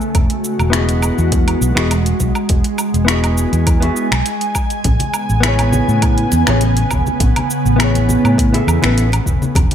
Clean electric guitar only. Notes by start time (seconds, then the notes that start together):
0.70 B3 E4 F#4
0.75 G#4 D#5
1.75 B3 E4 F#4 G#4 D#5
3.05 B3 E4 F#4
3.10 G#4 D#5
3.80 B3 E4 F#4 G#4
3.85 E5
5.40 B3 E4
5.45 G#4 C#5
6.47 B3 E4 G#4 C#5
7.76 B3 E4
7.80 G#4 A4 C#5
8.53 B3 E4 G#4 A4 E5
8.82 B3 E4 A4
8.86 B4